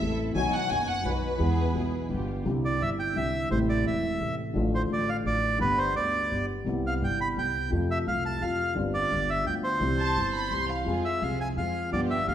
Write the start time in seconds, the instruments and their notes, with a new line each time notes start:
Already playing: violin section E5
0.00 grand piano A1 A2 E3 A3 C4 A4, upright bass A1, string section C4 E4 A4
0.34 grand piano B1 B2 D#3 F#3 B3, upright bass B1, string section B3 D#4 F#4, violin section G#5
0.38 grand piano F#4
0.54 violin section F#5
0.69 upright bass F#1, grand piano F#1 F#2 D#3 F#3 B3 F#4, string section B3 D#4 F#4, violin section G#5
0.88 violin section F#5
1.03 upright bass B1, grand piano B1 B2 D#3 F#3 B3, string section B3 D#4 F#4, violin section B4
1.07 grand piano F#4
1.38 grand piano E2 E3 G#3 B3, upright bass E2, string section B3 E4 G#4
1.42 grand piano G#4
1.73 upright bass B1, grand piano B1 B2 E3 G#3 B3 G#4, string section B3 E4 G#4
2.09 upright bass G1, grand piano G1 G2 D3 G3 B3, string section B3 F4 G4
2.13 grand piano F4
2.44 upright bass C2, grand piano C2 C3 D3 G3 C4 E4
2.65 bandoneon D5
2.79 upright bass G1, grand piano G1 G2 D3 G3 C4, bandoneon E5
2.83 grand piano E4
2.99 bandoneon G5
3.13 grand piano C2 C3 D3 G3 C4, upright bass C2, bandoneon E5
3.18 grand piano E4
3.49 grand piano A1 A2 C3 E3 A3, upright bass A1, bandoneon C5
3.53 grand piano E4
3.69 bandoneon D5
3.84 upright bass E1, grand piano E1 E2 C3 E3 A3, bandoneon E5
3.88 grand piano E4
4.19 grand piano A1 A2 C3 E3 A3 E4, upright bass A1
4.53 grand piano A1 A2 D3 F3 A3 F4, upright bass A1
4.75 bandoneon C5
4.88 grand piano A1 A2 D3 F3 A3 F4, upright bass A1
4.93 bandoneon D5
5.09 bandoneon F5
5.23 grand piano A1 A2 D3 F3 A3 F4, upright bass A1, bandoneon D5
5.58 grand piano G1 G2 D3 G3 B3 G4, upright bass G1, bandoneon B4
5.78 bandoneon C5
5.94 upright bass D2, grand piano D2 D3 G3 B3, bandoneon D5
6.29 grand piano G1 G2 D3 G3 B3 G4, upright bass G1
6.64 grand piano C2 C3 G3 B3, upright bass C2
6.68 grand piano E4
6.87 bandoneon F5
6.99 grand piano G1 G2 C3 G3 B3 E4, upright bass G1
7.04 bandoneon G5
7.21 bandoneon B5
7.37 grand piano C2 C3 G3 B3 E4, upright bass C2, bandoneon G5
7.70 grand piano F2 C3 F3 A3 F4, upright bass F2
7.91 bandoneon E5
8.05 upright bass C2, grand piano C2 C3 F3 A3, bandoneon F5
8.09 grand piano F4
8.26 bandoneon A5
8.40 upright bass F2, grand piano F2 C3 F3 A3, bandoneon F5
8.44 grand piano F4
8.75 upright bass G1, grand piano G1 G2 D3 G3 C4 F4
8.94 bandoneon D5
9.10 upright bass G1, grand piano G1 G2 D3 G3 B3
9.30 bandoneon E5
9.44 upright bass D2, grand piano D2 D3 G3 B3 F4, bandoneon G5
9.64 bandoneon C5
9.79 upright bass C2, grand piano C2 C3 E3 G3 C4
9.83 grand piano G4
9.99 violin section A5
10.15 upright bass G1, grand piano G1 G2 E3 G3 C4 G4
10.33 violin section B5
10.50 upright bass C2, grand piano C2 C3 E3 G3 C4, violin section C6
10.54 grand piano G4
10.68 violin section F5
10.85 grand piano F2 F3 G#3 C4, upright bass F2, string section C4 F4 G#4
10.89 grand piano G#4
11.05 bandoneon E5
11.21 upright bass C2, grand piano C2 C3 F3 G#3 C4, string section C4 F4 G#4, bandoneon F5
11.25 grand piano G#4
11.41 bandoneon G#5
11.56 upright bass F2, grand piano F2 F3 G#3 C4, string section C4 F4 G#4, bandoneon F5
11.60 grand piano G#4
11.91 upright bass G1, grand piano G1 G2 F3 B3 D4, string section B3 F4 G4, bandoneon D5
11.95 grand piano G4
12.10 bandoneon E5
12.26 upright bass D2, grand piano D2 D3 F3 B3 D4 G4, string section B3 F4 G4, bandoneon F5